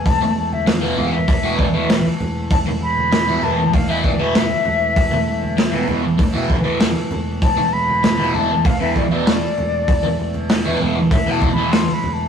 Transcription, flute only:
\new Staff \with { instrumentName = "Flute" } { \time 4/4 \tempo 4 = 98 a''8 a''16 e''16 f''8 f''16 e''8. d''16 e''8 r8. | a''8 b''4 a''8 f''16 e''16 d''16 e''4~ e''16~ | e''4~ e''16 r2 r8. | a''8 b''4 a''8 f''16 e''16 d''16 d''4~ d''16~ |
d''4~ d''16 r8. \tuplet 3/2 { e''8 a''8 b''8 c'''8 b''8 a''8 } | }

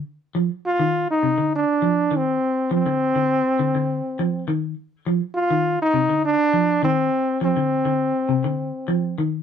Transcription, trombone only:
\new Staff \with { instrumentName = "Trombone" } { \time 4/4 \key c \minor \tempo 4 = 102 r4 f'8. ees'8. d'4 c'8~ | c'8 c'2. r8 | r4 f'8. ees'8. d'4 c'8~ | c'8 c'2. r8 | }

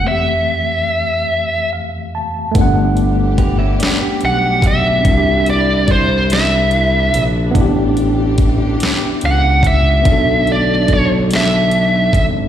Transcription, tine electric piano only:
\new Staff \with { instrumentName = "Tine electric piano" } { \time 6/8 \key g \lydian \tempo 4. = 48 << { r2 f''8 a''8 | r2. | r2. | r2. |
r2. | } \\ { <f, e a c' g'>2. | <a b d' fis''>2. | <c' d' e' fis' g'>2. | <b d' e' g'>2. |
<b d' fis' a'>2. | } >> }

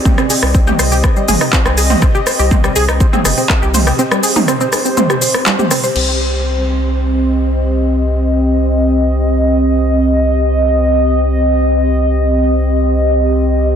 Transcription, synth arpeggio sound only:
\new Staff \with { instrumentName = "Synth arpeggio sound" } { \time 4/4 \key c \minor \tempo 4 = 122 c'16 c'16 aes'16 c'16 c'16 g'16 c''16 g'16 c'16 g16 aes'16 ees'16 c'16 c'16 aes'16 c'16 | c'16 g'16 c''16 g'16 c'16 g16 aes'16 ees'16 c'16 c'16 aes'16 c'16 c'16 g'16 c''16 g'16 | c'16 g16 aes'16 ees'16 c'16 c'16 aes'16 c'16 c'16 g'16 c''16 c'16 g16 g'16 c'16 c''16 | r1 |
r1 | r1 | r1 | }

